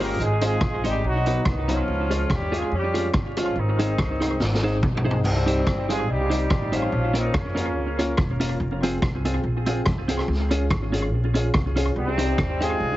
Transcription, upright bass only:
Already playing: G1
0.19 G#1
0.61 A#1
0.84 G#1
1.04 B1
1.46 C2
1.88 C#2
2.72 F2
3.14 G1
3.56 G#1
3.99 C2
4.40 G#1
4.83 B1
5.24 C2
5.67 G1
6.08 C2
6.50 A1
6.92 A#1
7.34 F2
7.77 C#2
8.18 E1
8.60 F1
9.02 C2
9.44 A#1
9.86 C2
10.28 C#2
10.70 G#1
11.13 A#1
11.55 C2
11.96 C2
12.80 C2

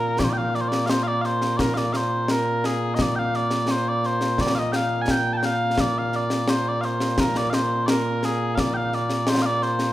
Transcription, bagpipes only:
Already playing: A#2 A#3 A#4
0.19 D5
0.24 C5
0.30 D5 G5
0.38 F5
0.55 D5
0.61 C5
0.68 D5
0.86 C5 F5
1.03 F5
1.07 D5
1.21 C5 F5
1.57 A#4 D5
1.74 D5 F5
1.93 C5 F5
2.31 A#4
2.66 G#4
2.94 D#5
3.01 D5
3.16 F5 G5
3.36 D5
3.71 C5
3.89 D5
4.06 C5
4.41 D5
4.55 D#5 F5
4.72 F5 G5
5.02 G#5
5.11 G5
5.33 A5
5.37 G5
5.46 F5
5.80 D5
5.98 F5
6.16 D5
6.50 C5
6.68 D5
6.81 C5 F5
7.20 A#4
7.37 D5
7.50 F5
7.54 C5
7.86 A#4 D5
8.25 G#4
8.55 F5
8.60 D5
8.74 F5 G5
8.94 D5
9.29 C5
9.42 D5 F5
9.63 C5

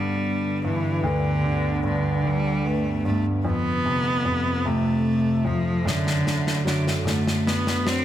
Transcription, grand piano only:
Already playing: G2 D3
0.64 G2
1.03 D2
1.44 D3
1.84 G2
2.23 D3
3.05 G2
3.45 F2
3.85 C3
4.25 F2
4.66 C3
5.45 F2
5.85 F#2
6.25 D3
6.65 F#3
7.05 D3
7.85 F#3

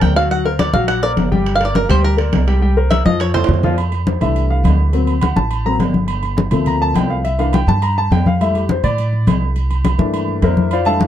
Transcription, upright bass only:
0.02 D2
0.73 A#1
1.17 G1
1.89 D2
2.32 C2
3.05 F2
3.48 F2
4.21 C2
4.64 D2
5.36 A1
5.79 G1
6.51 D2
6.94 C2
7.67 G2
8.11 F2
8.83 A2
9.27 C2
9.99 G2
10.42 F2

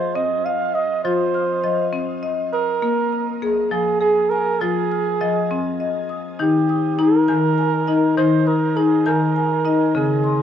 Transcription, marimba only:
Already playing: F3 D#5 F6
0.16 C4
0.46 D#5
0.75 D#6
1.05 F3 F4
1.34 F6
1.64 F3 D#5
1.93 C4
2.23 D#5
2.53 D#6
2.82 A#3
3.13 A#5
3.42 A#3 G#4
3.72 F3
4.01 G#4
4.32 G#5
4.61 F3 F4
4.92 F6
5.21 F3 D#5
5.51 C4
5.80 D#5
6.09 D#6
6.39 D#3 D#4
6.69 D#6
6.99 D#4 A#5
7.28 D#3 G#5
7.58 G#5
7.88 D#4 D#5
8.17 D#3 D#4
8.47 D#6
8.77 D#4 A#5
9.06 D#3 G#5
9.36 G#5
9.65 D#4 D#5
9.95 C#3 C4
10.24 C6

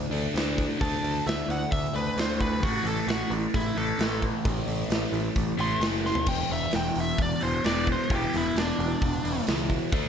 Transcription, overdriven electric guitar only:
Already playing: D3 A3 D4
0.11 D3 A3 D4
0.35 D3 A3 D4
0.78 D3 A3 D4
1.94 D3 A3 D4
2.17 D3 A3 D4
2.61 A2 E3 A3
3.76 A2 E3 A3
3.99 A2 E3 A3
4.46 A2 E3 A3
5.57 A2 E3 A3
5.80 A2 E3 A3
6.26 E2 B2 E3
7.41 E2 B2 E3
7.63 E2 B2 E3
8.09 E2 B2 E3
9.23 E2 B2 E3
9.46 E2 B2 E3
9.92 D3 A3 D4

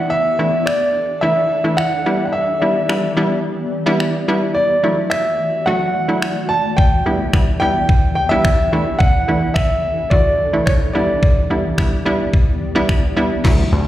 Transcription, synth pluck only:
Already playing: E3 A3 D4 E4
0.39 E3 A3 D4 E4
1.22 E3 A3 D4 E4
1.64 E3 A3 D4 E4
2.06 G3 B3 D4 E4
2.62 G3 B3 D4 E4
2.89 G3 B3 D4 E4
3.17 G3 B3 D4 E4
3.86 G3 B3 D4 E4
4.28 G3 B3 D4 E4
4.83 F#3 A3 D4 E4
5.67 F#3 A3 D4 F#4
6.08 F#3 A3 D4 E4
7.06 G3 B3 D4 E4
7.34 G3 B3 D4 E4
7.61 G3 B3 D4 E4
8.31 G3 B3 D4 E4
8.73 E3 A3 D4 E4
9.28 E3 A3 D4 E4
10.11 E3 A3 D4 F#4
10.53 E3 A3 D4 E4
10.95 G3 B3 D4 E4
11.50 G3 B3 D4 E4
11.78 G3 B3 D4 E4
12.05 G3 B3 D4 E4
12.75 G3 B3 D4 E4
13.16 G3 B3 D4 E4
13.44 F#3 A3 D4 E4

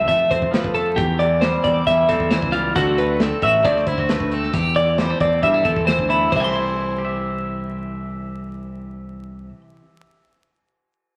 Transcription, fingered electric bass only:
0.08 F2
0.31 F2
0.42 F2
0.65 F2
0.98 E2
1.64 E2
1.87 E2
2.09 E2
2.20 E2
2.42 C#2
2.76 D2
3.43 A1
3.65 D2
3.87 D2
3.98 D2
4.20 D2
4.54 E2
5.21 E2
5.42 G2
5.65 E2
5.76 E2
5.99 D2
6.33 C2

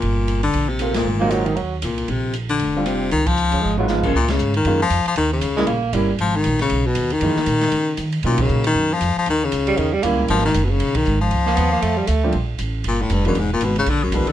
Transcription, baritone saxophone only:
Already playing: A#2
0.43 D3
0.69 C3
0.95 A#2
1.84 A#2
2.10 C3
2.50 D3
2.86 C3
3.12 D#3
3.27 F3
4.16 A#2
4.31 C#3
4.56 D#3
4.82 F3
5.07 F3
5.18 D#3
5.33 C#3
6.21 F3
6.36 D#3
6.61 C#3
6.87 B2
7.12 D#3
8.26 A#2
8.42 C#3
8.67 D#3
8.94 F3
9.18 F3
9.30 D#3
9.44 C#3
10.30 F3
10.45 D#3
10.64 B2
10.70 C#3
10.96 D#3
11.21 F3
12.88 A#2
13.02 A2
13.13 G2
13.27 F#2
13.39 G#2
13.53 A#2
13.64 B2
13.78 C#3
13.90 D3
14.03 F#2
14.15 B2
14.29 D3

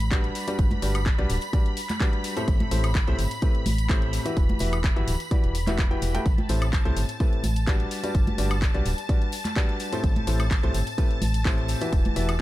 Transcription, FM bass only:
Already playing: A1
0.59 G1
0.82 G1
1.19 B1
1.30 D1
2.48 A1
2.71 A1
3.08 C2
3.19 G1
3.66 A1
4.37 E1
4.60 E1
4.97 G1
5.08 D1
5.44 E1
6.02 E1
6.26 A1
6.49 A1
6.85 C2
6.97 G1
7.44 A1
8.15 G1
8.38 G1
8.74 B1
8.86 D1
10.04 A1
10.27 A1
10.63 C2
10.74 G1
11.22 A1
11.93 E1
12.16 E1

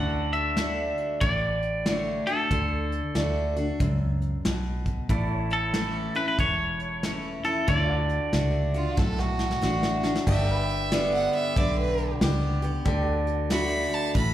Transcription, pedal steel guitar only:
Already playing: F#4 A4 D5
5.10 E4 A4 D5
5.32 C#5
7.68 E4 A4 C#5
7.90 F#4 D5
10.27 G4 A4 D5
10.53 B4
12.86 G4 A4 D5
13.06 F#4

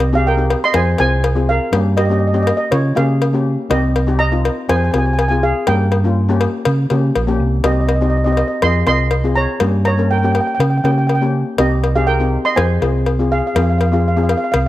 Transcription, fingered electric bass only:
Already playing: C2
0.74 F2
1.00 C2
1.73 G2
2.72 C#3
2.97 C#3
3.71 C2
4.69 F2
4.94 C2
5.68 G2
6.66 C#3
6.91 C#3
7.16 A#1
7.40 C2
7.64 C2
8.63 F2
8.87 C2
9.61 G2
10.60 C#3
10.84 C#3
11.59 C2
12.58 F2
12.82 C2
13.56 F2
14.54 C2

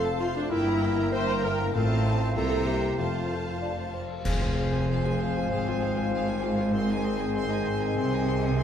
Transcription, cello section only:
Already playing: F2
0.51 G2
1.74 A2
2.36 C3
2.99 F2
4.25 F2
5.49 G#2
7.97 C3

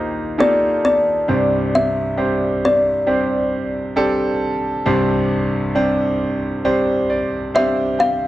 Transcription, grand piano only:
Already playing: D#2 A#2 A#3 D#4 F4 G4 A#4 C5
0.38 A#3 D#4 F4 G4 A4
1.28 C2 G2 G3 C4 D4 G4 C5
2.17 G3 C4 D4 G4 C5
3.07 G3 C4 D4 G4 C5
3.96 G3 C4 D4 G4 A4
4.86 C2 G2 G3 C4 D4 G4 C5
5.75 G3 C4 D4 G4 C5
6.65 G3 C4 D4 G4 C5
7.10 D5
7.54 G3 C4 D4 G4 C5 F5
7.99 G5

